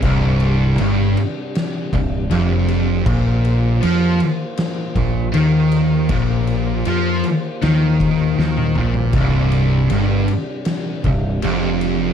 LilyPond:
<<
  \new Staff \with { instrumentName = "Tonewheel organ" } { \time 4/4 \key c \minor \tempo 4 = 79 <c g d'>1 | <bes f' c''>1~ | <bes f' c''>1 | <c g d'>1 | }
  \new Staff \with { instrumentName = "Distorted electric guitar" } { \clef bass \time 4/4 \key c \minor c,4 g,8 r4 c,8 f,4 | bes,4 f8 r4 bes,8 ees4 | bes,4 f8 r8 ees4 ees8 bes,8 | c,4 g,8 r4 c,8 f,4 | }
  \new Staff \with { instrumentName = "Distorted electric guitar" } { \clef bass \time 4/4 \key c \minor c,4 g,8 r4 c,8 f,4 | bes,4 f8 r4 bes,8 ees4 | bes,4 f8 r8 ees4 ees8 bes,8 | c,4 g,8 r4 c,8 f,4 | }
  \new Staff \with { instrumentName = "Overdriven electric guitar" } { \clef bass \time 4/4 \key c \minor c,4 g,8 r4 c,8 f,4 | bes,4 f8 r4 bes,8 ees4 | bes,4 f8 r8 ees4 ees8 bes,8 | c,4 g,8 r4 c,8 f,4 | }
  \new Staff \with { instrumentName = "Fingered electric bass" } { \clef bass \time 4/4 \key c \minor c,,4 g,,8 r4 c,,8 f,,4 | bes,,4 f,8 r4 bes,,8 ees,4 | bes,,4 f,8 r8 ees,4 ees,8 bes,,8 | c,,4 g,,8 r4 c,,8 f,,4 | }
  \new DrumStaff \with { instrumentName = "Drums" } \drummode { \time 4/4 <cymc bd>8 cymc8 cymc8 cymc8 <cymc sn>8 <cymc bd>8 cymc8 cymc8 | <cymc bd>8 cymc8 cymc8 cymc8 <cymc sn>8 <cymc bd>8 cymc8 cymc8 | <cymc bd>8 cymc8 cymc8 cymc8 <cymc sn>8 <cymc bd>8 sn16 tommh16 toml16 tomfh16 | <cymc bd>8 cymc8 cymc8 cymc8 <cymc sn>8 <cymc bd>8 cymc8 cymc8 | }
>>